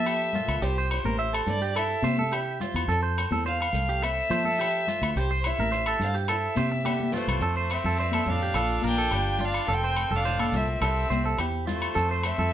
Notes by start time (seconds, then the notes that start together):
Already playing: F3 A3 C4 A4 E5
0.06 G4, low agogo, maracas
0.33 A#2 F4, low conga
0.48 C#2, low agogo
0.62 C2 C3 G4 C5, maracas
0.78 C5
0.91 E4 C5, low agogo, maracas
1.04 A1 A#4, high conga, maracas
1.19 E3 E5, maracas
1.33 A4, low agogo
1.46 G2 C4 D5, low conga, maracas
1.62 G4, maracas
1.76 G2 E4 A4 E5, low agogo, maracas
2.02 C3 C5, high conga, maracas
2.07 G4
2.18 A4, high conga
2.31 E3 G4, low agogo, maracas
2.60 C4 F4, low conga, maracas
2.74 E2, low agogo
2.88 F2 A4, maracas
2.92 A4
3.03 C5
3.18 C4, low agogo, maracas
3.31 E2 A4, high conga, maracas
3.46 F3 C5 F5, maracas
3.61 muted clean electric guitar stroke, low agogo
3.73 C2 A3, low conga, maracas
3.89 G4, maracas
4.02 C3 C4 E5, muted clean electric guitar stroke, low agogo, maracas
4.30 F3 A4 C5, high conga, maracas
4.44 A4, high conga
4.59 F3 G4, low agogo, maracas
4.87 A3 F4, low conga, maracas
5.02 D2, low agogo
5.16 C2 C3 G4 C5, maracas
5.31 C5
5.44 E4 E5, low agogo, maracas
5.58 A1 A#4, high conga, maracas
5.72 E3 C5, maracas
5.86 A4, low agogo
5.99 G2 F5, low conga, maracas
6.03 C4
6.14 G4, maracas
6.28 G2 E4 A4 E5, low agogo, maracas
6.55 C3 G4 C5, high conga, maracas
6.70 muted clean electric guitar stroke, high conga, maracas
6.84 D3 G4, high conga, low agogo, maracas
6.99 high conga
7.12 E3 A3 F4, low conga, maracas
7.17 C5
7.27 C2, low conga, low agogo, maracas
7.40 F2 A4, muted steel-string acoustic guitar stroke, maracas
7.57 C5
7.70 A3 C4 E5, low agogo, maracas
7.84 F2 A4, low conga
7.97 G2 C5, maracas
8.11 A4, high conga, low agogo
8.25 F2 A2 D4, low conga
8.30 F5
8.40 G4, maracas
8.53 A#1 A#2 F4 A4, low agogo, maracas
8.81 A#1 A#3 A#4, high conga, maracas
8.87 D4 G5
8.98 A4, maracas
9.11 G1 F3 G4, low agogo, maracas
9.39 D4 F4, low conga, maracas
9.43 D4 F5
9.54 low agogo, maracas
9.67 F1 F2 A4, maracas
9.71 C4 G5
9.84 C5
9.96 A3, low agogo, maracas
10.10 F1 A4, low conga
10.15 D4 F5
10.25 A2 C5, maracas
10.39 A4, high conga, low agogo
10.52 C2 A#2, low conga, maracas
10.56 C4 E5
10.68 maracas
10.81 C2 C3 G4 A4, low agogo, maracas
10.85 C4 E5
11.10 C2 C4 C5, high conga, maracas
11.25 A4, maracas
11.37 E2 E3 G4, low agogo, maracas
11.67 A3 E4 F4 C5, low conga, maracas
11.82 low agogo, maracas
11.94 F2 A4, maracas
12.11 C5
12.23 A3 C4 E5, low agogo, maracas
12.38 F2 A4, low conga